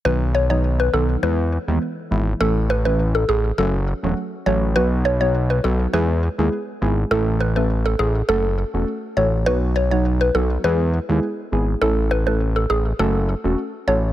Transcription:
<<
  \new Staff \with { instrumentName = "Synth pluck" } { \time 4/4 \key e \major \tempo 4 = 102 b'16 r16 cis''16 cis''16 r16 b'16 a'16 r16 b'8. r4 r16 | a'16 r16 b'16 b'16 r16 a'16 gis'16 r16 a'8. r8. cis''16 r16 | b'16 r16 cis''16 cis''16 r16 b'16 a'16 r16 b'8. r4 r16 | a'16 r16 b'16 b'16 r16 a'16 gis'16 r16 a'8. r8. cis''16 r16 |
b'16 r16 cis''16 cis''16 r16 b'16 a'16 r16 b'8. r4 r16 | a'16 r16 b'16 b'16 r16 a'16 gis'16 r16 a'8. r8. cis''16 r16 | }
  \new Staff \with { instrumentName = "Synth stab" } { \time 4/4 \key e \major <dis fis b dis'>8. <dis fis b dis'>8. <dis fis b dis'>8 <e gis b e'>16 r8 <e gis b e'>16 r8 <e gis b e'>16 r16 | <e a cis' e'>8. <e a cis' e'>16 r4 <fis a cis' fis'>16 r8 <fis a cis' fis'>16 r8 <fis a cis' fis'>16 r16 | <fis b dis' fis'>8. <fis b dis' fis'>8. <fis b dis' fis'>8 <gis b e' gis'>16 r8 <gis b e' gis'>16 r8 <gis b e' gis'>16 r16 | <a cis' e' a'>8. <a cis' e' a'>16 r4 <a cis' fis' a'>16 r8 <a cis' fis' a'>16 r8 <a cis' fis' a'>16 r16 |
<fis b dis' fis'>8. <fis b dis' fis'>8. <fis b dis' fis'>8 <gis b e' gis'>16 r8 <gis b e' gis'>16 r8 <gis b e' gis'>16 r16 | <a cis' e' a'>8. <a cis' e' a'>16 r4 <a cis' fis' a'>16 r8 <a cis' fis' a'>16 r8 <a cis' fis' a'>16 r16 | }
  \new Staff \with { instrumentName = "Analog synth bass" } { \clef bass \time 4/4 \key e \major b,,4. b,,8 e,8. dis,16 r8 gis,,8 | a,,4. a,,8 fis,,8. e,,16 r8 a,,8 | b,,4. b,,8 e,8. dis,16 r8 gis,,8 | a,,4. a,,8 fis,,8. e,,16 r8 a,,8 |
b,,4. b,,8 e,8. dis,16 r8 gis,,8 | a,,4. a,,8 fis,,8. e,,16 r8 a,,8 | }
>>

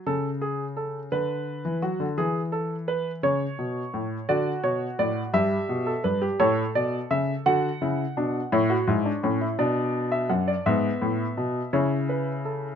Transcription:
<<
  \new Staff \with { instrumentName = "Grand piano" } { \time 6/8 \key a \mixolydian \tempo 4. = 57 << { r2. | r2. | d''8 cis''8 d''8 e''4 b'8 | cis''8 d''8 e''8 fis''4. |
cis''4. d''8. e''16 fis''16 d''16 | e''4. cis''8 b'8 a'8 | } \\ { a'8 gis'8 a'8 b'4 fis'8 | gis'8 a'8 b'8 cis''4. | fis'4. g'8. a'16 r16 g'16 | a'4. fis'8 e'8 d'8 |
e'16 fis'16 e'16 d'16 cis'16 e'16 d'4. | b4. e'4. | } >> }
  \new Staff \with { instrumentName = "Grand piano" } { \clef bass \time 6/8 \key a \mixolydian cis4. d8. e16 fis16 d16 | e4. cis8 b,8 a,8 | d8 b,8 a,8 g,8 b,8 g,8 | a,8 b,8 cis8 d8 cis8 b,8 |
a,8 gis,8 a,8 b,4 fis,8 | gis,8 a,8 b,8 cis4. | }
>>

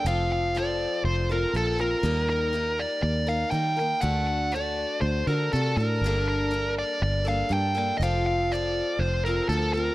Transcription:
<<
  \new Staff \with { instrumentName = "Lead electric guitar" } { \time 4/4 \key f \mixolydian \tempo 4 = 121 f''8 f''8 d''4 c''8 bes'8 a'8 bes'8~ | bes'8 bes'4 d''8 d''8 f''8 g''8 g''8 | fis''8 fis''8 d''4 c''8 bes'8 a'8 bes'8~ | bes'8 bes'4 d''8 d''8 f''8 g''8 g''16. ees''32 |
f''8 f''8 d''4 c''8 bes'8 a'8 bes'8 | }
  \new Staff \with { instrumentName = "Steel-string acoustic guitar" } { \time 4/4 \key f \mixolydian <f c' f' a'>4 <f c' f' a'>4. <c' f' a'>8 <f c' f' a'>8 <c' f' a'>8 | <ees g bes ees' bes'>4 <g bes ees' bes'>4. <bes ees' bes'>8 <g bes ees' bes'>8 <bes ees' bes'>8 | <d a d' fis' a'>4 <a d' fis' a'>4. <d' fis' a'>8 <a d' fis' a'>8 <d' fis' a'>8 | <g, d g bes d' a'>4 <g bes d' a'>4. <g bes d' a'>8 <g bes d' a'>8 <g bes d' a'>8 |
<f c' f' a'>4 <f c' f' a'>4. <c' f' a'>8 <f c' f' a'>8 <c' f' a'>8 | }
  \new Staff \with { instrumentName = "Fingered electric bass" } { \clef bass \time 4/4 \key f \mixolydian f,,2 f,,4 bes,,4 | ees,2 ees,4 ees4 | d,2 d,8 d8 c8 a,8 | g,,2 g,,4 g,4 |
f,,2 f,,4 d,4 | }
>>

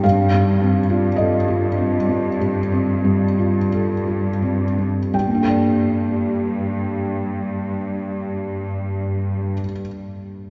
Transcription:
<<
  \new Staff \with { instrumentName = "Felt piano" } { \time 4/4 \key g \minor \tempo 4 = 44 << { f''4 ees''2 r4 | <g, g bes d' a' d'' g''>1 | } \\ { g,16 g16 c'16 f'16 a'16 f'16 c'16 g16 g,16 c'16 g16 f'16 a'16 f'16 c'16 g16 | r1 | } >> }
  \new Staff \with { instrumentName = "Cello section" } { \clef bass \time 4/4 \key g \minor g,1 | g,1 | }
>>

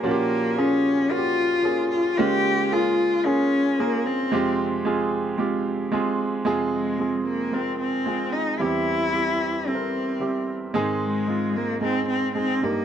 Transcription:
<<
  \new Staff \with { instrumentName = "Grand piano" } { \time 4/4 \key f \minor \tempo 4 = 112 <bes des' f' ges' g'>8. r16 <bes des' f' aes'>8. r16 <bes des' f' ges' g'>8. r16 <bes des' f' aes'>8. r16 | <aes bes des' f'>8. r16 <bes des' f' aes'>8. r16 <bes des' f' aes'>8. r16 <bes des' f' aes'>8. r16 | <aes c' f' g'>8. r16 <aes c' f' aes'>8. r16 <aes c' f' g'>8. r16 <aes c' f' aes'>8. r16 | <aes c' f' aes'>8. r16 <aes c' f' aes'>8. r16 <aes c' f' bes'>8. r16 <aes c' f' aes'>8. r16 |
<g c' e' g'>8. r16 <g c' e' g'>8. r16 <g c' e' a' bes'>8. r16 <g c' e' g'>8. r16 | <aes c' ees' aes'>8. r16 <aes c' ees' f'>8. r16 <aes c' ees' aes'>8. r16 <aes c' ees' aes'>8 <g bes ees' g'>8 | }
  \new Staff \with { instrumentName = "Grand piano" } { \clef bass \time 4/4 \key f \minor <bes, f>1 | des1 | <f, c>1 | <f, c>1 |
<e, e>1 | <aes, ees>2.~ <aes, ees>8 g,8 | }
  \new Staff \with { instrumentName = "Cello" } { \time 4/4 \key f \minor bes4 des'4 f'4. f'8 | g'4 f'4 des'4 bes8 c'8~ | c'8 r2. r8 | r8 aes4 bes8 c'8 c'4 ees'8 |
e'2 c'4. r8 | r8 aes4 bes8 c'8 c'8 c'8 bes8 | }
>>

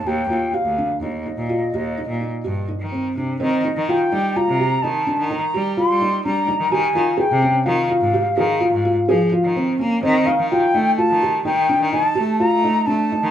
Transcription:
<<
  \new Staff \with { instrumentName = "Flute" } { \time 7/4 \key ees \lydian \tempo 4 = 127 g''4 f''4 ees''1 r4 | ees''4 g''4 bes''4 a''4 bes''4 c'''4 bes''4 | aes''4 g''4 f''1 r4 | ees''8 f''8 g''4 a''4 g''4 a''4 bes''4 a''4 | }
  \new Staff \with { instrumentName = "Felt piano" } { \time 7/4 \key ees \lydian g'8 f'8 g'8 d'8 ees'8 ees'8 f'8 g'8 ees'8 ees'8 g'8 ees'8 c'8 d'8 | c'8 ees'8 f'8 ees'8 f'8 g'8 ees'8 d'8 ees'8 g'8 f'8 ees'8 d'8 ees'8 | g'8 f'8 aes'8 des'8 f'8 f'8 g'8 aes'8 f'8 f'8 aes'8 f'8 c'8 des'8 | c'8 ees'8 f'8 ees'8 f'8 g'8 ees'8 d'8 ees'8 g'8 f'8 ees'8 d'8 ees'8 | }
  \new Staff \with { instrumentName = "Cello" } { \clef bass \time 7/4 \key ees \lydian ees,8 ees,8 r16 d,8 r16 ees,8 r16 bes,8 r16 ees,8. bes,8 r16 g,8 r16 ees8. c8 | ees8 r16 ees8 r16 g8 r16 c8. ees8. ees8 r16 g8. g8. g8 r16 ees16 | ees8 ees8 r16 c8 r16 ees8 r16 aes,8 r16 ees8. aes,8 r16 f8 r16 ees8. bes8 | ees8 r16 ees8 r16 a8 r16 ees8. ees8. ees8 r16 a8. a8. a8 r16 ees16 | }
>>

